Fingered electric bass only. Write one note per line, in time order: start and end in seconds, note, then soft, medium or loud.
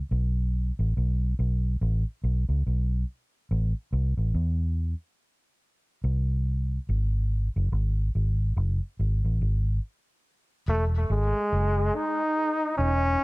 0.11 0.70 B1 loud
0.79 0.94 A1 medium
0.97 1.34 B1 medium
1.39 1.76 B1 medium
1.81 2.03 A1 loud
2.24 2.45 B1 medium
2.49 2.63 C#2 medium
2.67 3.03 B1 medium
3.51 3.72 A1 medium
3.93 4.14 C2 loud
4.17 4.32 A1 medium
4.34 4.93 E2 medium
6.04 6.78 C2 medium
6.89 7.47 G#1 medium
7.56 7.71 F#1 medium
7.72 8.09 G#1 medium
8.15 8.52 G#1 medium
8.57 8.78 F#1 medium
8.99 9.21 G#1 medium
9.24 9.39 A1 medium
9.41 9.78 G#1 medium
10.68 11.05 E1 loud
11.10 11.31 G#1 loud
11.53 11.89 F#1 medium
12.79 13.15 E1 medium